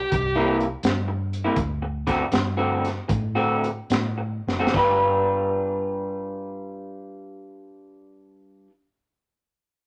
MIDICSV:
0, 0, Header, 1, 6, 480
1, 0, Start_track
1, 0, Tempo, 729927
1, 1030, Time_signature, 4, 2, 24, 8
1, 1525, Tempo, 790514
1, 2485, Tempo, 859599
1, 5814, End_track
2, 0, Start_track
2, 0, Title_t, "Lead electric guitar"
2, 0, Program_c, 0, 29
2, 0, Note_on_c, 0, 67, 72
2, 374, Note_off_c, 0, 67, 0
2, 5814, End_track
3, 0, Start_track
3, 0, Title_t, "Clean electric guitar"
3, 0, Program_c, 1, 27
3, 234, Note_on_c, 1, 64, 89
3, 237, Note_on_c, 1, 58, 89
3, 239, Note_on_c, 1, 55, 77
3, 242, Note_on_c, 1, 48, 73
3, 419, Note_off_c, 1, 64, 0
3, 421, Note_off_c, 1, 55, 0
3, 421, Note_off_c, 1, 58, 0
3, 423, Note_off_c, 1, 48, 0
3, 950, Note_on_c, 1, 64, 78
3, 953, Note_on_c, 1, 58, 67
3, 955, Note_on_c, 1, 55, 63
3, 958, Note_on_c, 1, 48, 61
3, 1029, Note_off_c, 1, 64, 0
3, 1031, Note_off_c, 1, 58, 0
3, 1032, Note_off_c, 1, 55, 0
3, 1033, Note_off_c, 1, 48, 0
3, 1360, Note_on_c, 1, 50, 82
3, 1364, Note_on_c, 1, 57, 74
3, 1368, Note_on_c, 1, 60, 83
3, 1370, Note_on_c, 1, 66, 88
3, 1466, Note_off_c, 1, 50, 0
3, 1468, Note_off_c, 1, 57, 0
3, 1470, Note_off_c, 1, 60, 0
3, 1471, Note_off_c, 1, 66, 0
3, 1679, Note_on_c, 1, 66, 73
3, 1680, Note_on_c, 1, 60, 75
3, 1683, Note_on_c, 1, 57, 66
3, 1686, Note_on_c, 1, 50, 59
3, 1863, Note_off_c, 1, 66, 0
3, 1864, Note_off_c, 1, 60, 0
3, 1866, Note_off_c, 1, 57, 0
3, 1867, Note_off_c, 1, 50, 0
3, 2153, Note_on_c, 1, 66, 94
3, 2155, Note_on_c, 1, 60, 80
3, 2158, Note_on_c, 1, 57, 80
3, 2161, Note_on_c, 1, 50, 78
3, 2346, Note_off_c, 1, 66, 0
3, 2348, Note_off_c, 1, 60, 0
3, 2349, Note_off_c, 1, 57, 0
3, 2350, Note_off_c, 1, 50, 0
3, 2873, Note_on_c, 1, 66, 73
3, 2876, Note_on_c, 1, 60, 63
3, 2879, Note_on_c, 1, 57, 73
3, 2881, Note_on_c, 1, 50, 57
3, 2944, Note_off_c, 1, 57, 0
3, 2946, Note_on_c, 1, 55, 76
3, 2953, Note_off_c, 1, 60, 0
3, 2953, Note_off_c, 1, 66, 0
3, 2955, Note_on_c, 1, 62, 87
3, 2956, Note_off_c, 1, 50, 0
3, 2962, Note_on_c, 1, 65, 78
3, 2969, Note_on_c, 1, 71, 85
3, 5149, Note_off_c, 1, 55, 0
3, 5158, Note_off_c, 1, 62, 0
3, 5165, Note_off_c, 1, 65, 0
3, 5172, Note_off_c, 1, 71, 0
3, 5814, End_track
4, 0, Start_track
4, 0, Title_t, "Fingered electric bass"
4, 0, Program_c, 2, 33
4, 78, Note_on_c, 2, 36, 85
4, 485, Note_off_c, 2, 36, 0
4, 549, Note_on_c, 2, 43, 85
4, 964, Note_off_c, 2, 43, 0
4, 1030, Note_on_c, 2, 38, 89
4, 1456, Note_off_c, 2, 38, 0
4, 1525, Note_on_c, 2, 43, 78
4, 1932, Note_off_c, 2, 43, 0
4, 1995, Note_on_c, 2, 45, 90
4, 2418, Note_off_c, 2, 45, 0
4, 2486, Note_on_c, 2, 45, 83
4, 2760, Note_off_c, 2, 45, 0
4, 2804, Note_on_c, 2, 30, 82
4, 2936, Note_off_c, 2, 30, 0
4, 2953, Note_on_c, 2, 31, 84
4, 5134, Note_off_c, 2, 31, 0
4, 5814, End_track
5, 0, Start_track
5, 0, Title_t, "Muted clean electric guitar strokes"
5, 77, Note_on_c, 9, 29, 48
5, 142, Note_off_c, 9, 29, 0
5, 710, Note_on_c, 9, 29, 45
5, 776, Note_off_c, 9, 29, 0
5, 1199, Note_on_c, 9, 29, 46
5, 1264, Note_off_c, 9, 29, 0
5, 1523, Note_on_c, 9, 29, 41
5, 1584, Note_off_c, 9, 29, 0
5, 1990, Note_on_c, 9, 29, 45
5, 2050, Note_off_c, 9, 29, 0
5, 2640, Note_on_c, 9, 29, 52
5, 2695, Note_off_c, 9, 29, 0
5, 5814, End_track
6, 0, Start_track
6, 0, Title_t, "Drums"
6, 78, Note_on_c, 9, 42, 74
6, 79, Note_on_c, 9, 36, 99
6, 144, Note_off_c, 9, 42, 0
6, 145, Note_off_c, 9, 36, 0
6, 397, Note_on_c, 9, 42, 47
6, 463, Note_off_c, 9, 42, 0
6, 547, Note_on_c, 9, 42, 84
6, 559, Note_on_c, 9, 38, 99
6, 613, Note_off_c, 9, 42, 0
6, 624, Note_off_c, 9, 38, 0
6, 876, Note_on_c, 9, 42, 55
6, 942, Note_off_c, 9, 42, 0
6, 1027, Note_on_c, 9, 42, 70
6, 1029, Note_on_c, 9, 36, 102
6, 1093, Note_off_c, 9, 42, 0
6, 1095, Note_off_c, 9, 36, 0
6, 1363, Note_on_c, 9, 36, 66
6, 1363, Note_on_c, 9, 42, 53
6, 1375, Note_on_c, 9, 38, 28
6, 1429, Note_off_c, 9, 36, 0
6, 1429, Note_off_c, 9, 42, 0
6, 1441, Note_off_c, 9, 38, 0
6, 1524, Note_on_c, 9, 42, 81
6, 1535, Note_on_c, 9, 38, 97
6, 1585, Note_off_c, 9, 42, 0
6, 1596, Note_off_c, 9, 38, 0
6, 1845, Note_on_c, 9, 42, 55
6, 1856, Note_on_c, 9, 38, 31
6, 1906, Note_off_c, 9, 42, 0
6, 1917, Note_off_c, 9, 38, 0
6, 1995, Note_on_c, 9, 36, 109
6, 1996, Note_on_c, 9, 42, 69
6, 2056, Note_off_c, 9, 36, 0
6, 2057, Note_off_c, 9, 42, 0
6, 2326, Note_on_c, 9, 42, 49
6, 2387, Note_off_c, 9, 42, 0
6, 2484, Note_on_c, 9, 42, 79
6, 2494, Note_on_c, 9, 38, 92
6, 2540, Note_off_c, 9, 42, 0
6, 2550, Note_off_c, 9, 38, 0
6, 2812, Note_on_c, 9, 38, 55
6, 2867, Note_off_c, 9, 38, 0
6, 2914, Note_on_c, 9, 38, 75
6, 2955, Note_on_c, 9, 36, 93
6, 2955, Note_on_c, 9, 55, 80
6, 2970, Note_off_c, 9, 38, 0
6, 3011, Note_off_c, 9, 36, 0
6, 3011, Note_off_c, 9, 55, 0
6, 5814, End_track
0, 0, End_of_file